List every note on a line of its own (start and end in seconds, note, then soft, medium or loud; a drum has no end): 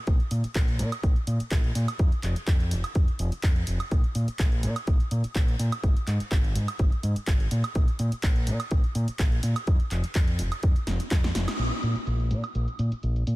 0.07 0.17 A#1 loud
0.07 kick loud
0.07 closed hi-hat soft
0.20 closed hi-hat soft
0.31 0.41 A#2 medium
0.31 open hi-hat loud
0.44 muted fingered electric bass stroke soft
0.44 closed hi-hat soft
0.55 0.81 A#1 medium
0.55 kick loud
0.55 clap loud
0.55 closed hi-hat medium
0.68 closed hi-hat soft
0.79 0.89 A#2 medium
0.79 open hi-hat loud
0.92 closed hi-hat soft
0.92 high woodblock medium
1.03 1.13 A#1 medium
1.03 kick loud
1.03 closed hi-hat soft
1.16 closed hi-hat soft
1.27 1.37 A#2 medium
1.27 open hi-hat loud
1.40 muted fingered electric bass stroke soft
1.40 closed hi-hat soft
1.51 1.70 A#1 medium
1.51 kick loud
1.51 clap loud
1.51 closed hi-hat soft
1.64 closed hi-hat soft
1.75 1.85 A#2 loud
1.75 open hi-hat loud
1.88 closed hi-hat soft
1.88 high woodblock medium
1.99 2.09 F2 medium
1.99 kick loud
1.99 closed hi-hat soft
2.12 closed hi-hat soft
2.23 2.33 F1 medium
2.23 clap medium
2.23 open hi-hat loud
2.36 muted fingered electric bass stroke soft
2.36 closed hi-hat soft
2.47 2.73 F2 medium
2.47 kick loud
2.47 clap loud
2.47 closed hi-hat soft
2.60 closed hi-hat soft
2.71 2.81 F1 medium
2.71 open hi-hat loud
2.84 closed hi-hat soft
2.84 high woodblock medium
2.95 3.05 F2 medium
2.95 kick loud
2.95 closed hi-hat soft
3.08 muted fingered electric bass stroke soft
3.08 closed hi-hat soft
3.19 3.29 F1 medium
3.19 open hi-hat loud
3.32 muted fingered electric bass stroke soft
3.32 closed hi-hat soft
3.43 3.62 F2 medium
3.43 kick loud
3.43 clap loud
3.43 closed hi-hat medium
3.56 closed hi-hat soft
3.67 3.77 F1 medium
3.67 open hi-hat loud
3.80 closed hi-hat soft
3.80 high woodblock medium
3.91 4.01 A#1 medium
3.91 kick loud
3.91 closed hi-hat soft
4.04 closed hi-hat soft
4.15 4.25 A#2 medium
4.15 open hi-hat loud
4.28 muted fingered electric bass stroke soft
4.28 closed hi-hat soft
4.39 4.65 A#1 loud
4.39 kick loud
4.39 clap loud
4.39 closed hi-hat soft
4.52 closed hi-hat soft
4.63 4.73 A#2 medium
4.63 open hi-hat loud
4.76 closed hi-hat soft
4.76 high woodblock medium
4.87 4.97 A#1 medium
4.87 kick loud
4.87 closed hi-hat soft
5.00 closed hi-hat soft
5.11 5.21 A#2 medium
5.11 open hi-hat loud
5.24 muted fingered electric bass stroke soft
5.24 closed hi-hat soft
5.35 5.54 A#1 medium
5.35 kick loud
5.35 clap loud
5.35 closed hi-hat soft
5.48 closed hi-hat soft
5.59 5.69 A#2 medium
5.59 open hi-hat loud
5.72 closed hi-hat soft
5.72 high woodblock medium
5.83 5.93 G#1 loud
5.83 kick loud
5.83 closed hi-hat medium
5.97 closed hi-hat soft
6.07 6.17 G#2 medium
6.07 clap medium
6.07 open hi-hat medium
6.20 muted fingered electric bass stroke soft
6.20 closed hi-hat soft
6.31 6.57 G#1 medium
6.31 kick loud
6.31 clap loud
6.31 closed hi-hat medium
6.44 closed hi-hat soft
6.55 6.65 G#2 medium
6.55 open hi-hat loud
6.68 closed hi-hat medium
6.68 high woodblock medium
6.79 6.89 G#1 medium
6.79 kick loud
6.79 closed hi-hat medium
6.92 muted fingered electric bass stroke soft
6.92 closed hi-hat soft
7.03 7.13 G#2 medium
7.03 open hi-hat loud
7.16 muted fingered electric bass stroke soft
7.16 closed hi-hat medium
7.27 7.46 G#1 medium
7.27 kick loud
7.27 clap loud
7.27 closed hi-hat medium
7.40 closed hi-hat soft
7.51 7.61 A#2 loud
7.51 open hi-hat loud
7.64 closed hi-hat medium
7.64 high woodblock medium
7.75 7.85 A#1 loud
7.75 kick loud
7.75 closed hi-hat medium
7.88 closed hi-hat soft
7.99 8.09 A#2 medium
7.99 open hi-hat loud
8.12 muted fingered electric bass stroke soft
8.12 closed hi-hat medium
8.23 8.49 A#1 loud
8.23 kick loud
8.23 clap loud
8.23 closed hi-hat medium
8.36 closed hi-hat soft
8.47 8.57 A#2 medium
8.47 open hi-hat loud
8.60 closed hi-hat medium
8.60 high woodblock medium
8.71 8.81 A#1 medium
8.71 kick loud
8.71 closed hi-hat medium
8.84 closed hi-hat soft
8.95 9.05 A#2 medium
8.95 open hi-hat loud
9.08 muted fingered electric bass stroke soft
9.08 closed hi-hat medium
9.19 9.38 A#1 medium
9.19 kick loud
9.19 clap loud
9.19 closed hi-hat medium
9.32 closed hi-hat soft
9.43 9.53 A#2 loud
9.43 open hi-hat loud
9.56 closed hi-hat soft
9.56 high woodblock medium
9.67 9.77 F2 loud
9.67 kick loud
9.67 closed hi-hat medium
9.80 closed hi-hat soft
9.91 10.01 F1 medium
9.91 clap medium
9.91 open hi-hat loud
10.04 muted fingered electric bass stroke soft
10.04 closed hi-hat medium
10.15 10.41 F2 loud
10.15 kick loud
10.15 clap loud
10.15 closed hi-hat medium
10.28 closed hi-hat soft
10.39 10.49 F1 medium
10.39 open hi-hat loud
10.52 closed hi-hat medium
10.52 high woodblock medium
10.63 10.73 F2 medium
10.63 kick loud
10.63 closed hi-hat medium
10.76 muted fingered electric bass stroke soft
10.76 closed hi-hat soft
10.87 10.97 F1 medium
10.87 snare medium
10.87 open hi-hat loud
11.00 muted fingered electric bass stroke soft
11.00 closed hi-hat medium
11.11 11.30 F2 medium
11.11 kick loud
11.11 snare medium
11.11 clap loud
11.11 closed hi-hat medium
11.24 snare medium
11.24 closed hi-hat soft
11.35 11.45 F1 loud
11.35 snare loud
11.35 open hi-hat loud
11.48 snare medium
11.48 closed hi-hat medium
11.48 high woodblock medium
11.59 11.69 A#1 medium
11.59 closed hi-hat soft
11.72 closed hi-hat soft
11.83 11.93 A#2 medium
11.83 open hi-hat medium
11.96 muted fingered electric bass stroke soft
11.96 closed hi-hat soft
12.07 12.32 A#1 medium
12.07 closed hi-hat soft
12.20 closed hi-hat soft
12.31 12.41 A#2 medium
12.31 open hi-hat medium
12.44 closed hi-hat soft
12.44 high woodblock medium
12.55 12.65 A#1 medium
12.55 closed hi-hat soft
12.68 closed hi-hat soft
12.79 12.89 A#2 medium
12.79 open hi-hat medium
12.92 muted fingered electric bass stroke soft
12.92 closed hi-hat soft
13.03 13.22 A#1 medium
13.03 closed hi-hat soft
13.16 closed hi-hat soft
13.27 13.36 A#2 medium
13.27 open hi-hat loud